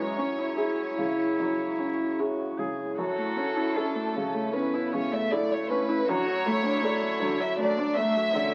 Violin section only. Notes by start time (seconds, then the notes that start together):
Already playing: C#5
2.99 A4
4.54 B4
4.94 C#5
5.12 E5
5.31 D5
5.51 C#5
5.69 B4
6.07 C#5
7.40 E5
7.59 D5
7.96 E5